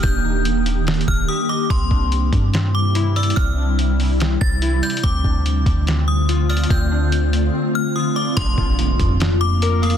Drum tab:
HH |x-----x--x--xxx---------|x-----x--x--x-----x--xxx|x-----x--o--x-----x--xxx|x-----x--x--x-----x--xxx|
SD |------------o-----------|------------o-----------|------------o-----------|------------o-----------|
BD |o--------------o--------|o--o-----o--------------|o--------------o--------|o--o-----o--------------|

HH |x-----x--x--------------|x-----x--x--x-----x--xx-|
SD |------------------------|------------o-----------|
BD |o-----------------------|o--o-----o--------------|